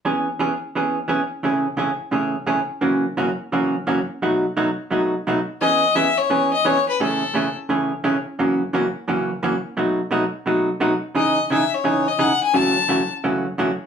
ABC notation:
X:1
M:4/4
L:1/16
Q:"Swing" 1/4=173
K:E
V:1 name="Fiddle"
z16 | z16 | z16 | z16 |
d4 e2 c4 d2 c2 B2 | A6 z8 z2 | z16 | z16 |
d4 e2 c4 d2 f2 g2 | a6 z8 z2 |]
V:2 name="Hollow-body jazz guitar"
[E,B,CG]2 z2 [E,B,CG] z3 [E,B,CG]2 z2 [E,B,CG] z3 | [A,,C,E,A,CG]2 z2 [A,,C,E,A,CG] z3 [A,,C,E,A,CG]2 z2 [A,,C,E,A,CG] z3 | [F,,C,E,^A,CF]2 z2 [F,,C,E,A,CF] z3 [F,,C,E,A,CF]2 z2 [F,,C,E,A,CF] z3 | [B,,F,A,DF]2 z2 [B,,F,A,DF] z3 [B,,F,A,DF]2 z2 [B,,F,A,DF] z3 |
[E,B,CG]2 z2 [E,B,CG] z3 [E,B,CG]2 z2 [E,B,CG] z3 | [A,,C,E,A,CG]2 z2 [A,,C,E,A,CG] z3 [A,,C,E,A,CG]2 z2 [A,,C,E,A,CG] z3 | [F,,C,E,^A,CF]2 z2 [F,,C,E,A,CF] z3 [F,,C,E,A,CF]2 z2 [F,,C,E,A,CF] z3 | [B,,F,A,DF]2 z2 [B,,F,A,DF] z3 [B,,F,A,DF]2 z2 [B,,F,A,DF] z3 |
[C,E,DG]2 z2 [C,E,DG] z3 [C,E,DG]2 z2 [C,E,DG] z3 | [F,,C,E,A,CF]2 z2 [F,,C,E,A,CF] z3 [F,,C,E,A,CF]2 z2 [F,,C,E,A,CF] z3 |]